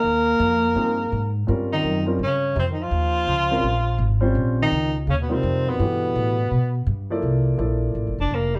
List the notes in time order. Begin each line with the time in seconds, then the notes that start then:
Already playing: A#3 A#4
0.04 D#2
0.39 F2
0.74 G2 F3 A#3 C4 D#4 G#4
1.12 G#2
1.47 G2 G3 C4 C#4 F4 A#4
1.72 D#3 D#4
1.83 F#2
2.06 G3 C4 C#4 F4 A#4
2.19 G2 C#3
2.23 C#4
2.55 F2 C3
2.59 C4
2.70 D#3 D#4
2.79 F3 F4
2.91 D#2
3.27 C#2
3.50 G3 C4 C#4 F4 A#4
3.63 A#1
3.98 G#1
4.21 G3 C4 C#4 F4 C5
4.35 A#1
4.62 D#3 D#4
4.71 C#2
5.07 D#2 C#3 C#4
5.22 B2 B3
5.29 C3 G3 C4 D#4 F4 A#4
5.43 F2
5.68 B2 B3
5.79 G2 E3 A3 D4 G4 B4
6.15 A2
6.51 B2
6.86 G2
7.10 F3 A#3 E4 A4 D5
7.22 C2
7.57 A#1 F3 A#3 E4 A4 D5
7.95 A1
8.07 G1
8.18 F1 D4
8.31 F1 A#3
8.55 G3